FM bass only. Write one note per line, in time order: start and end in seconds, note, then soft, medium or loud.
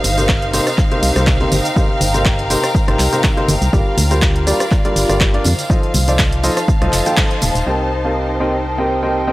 0.04 0.60 G1 loud
1.03 1.11 C2 medium
1.16 1.46 C2 medium
1.52 1.61 G1 loud
2.01 2.56 G1 loud
2.88 2.96 G1 loud
2.99 3.08 C2 loud
3.49 3.57 G1 medium
3.62 3.69 C2 loud
3.73 3.82 G1 medium
3.98 4.53 D2 loud
4.96 5.05 G1 medium
5.09 5.39 G1 medium
5.45 5.54 F2 loud
5.95 6.50 C2 loud
6.82 6.89 C2 loud
6.93 7.02 F1 medium
7.42 7.51 D#1 medium
7.55 7.63 D#1 loud
7.67 9.32 C2 medium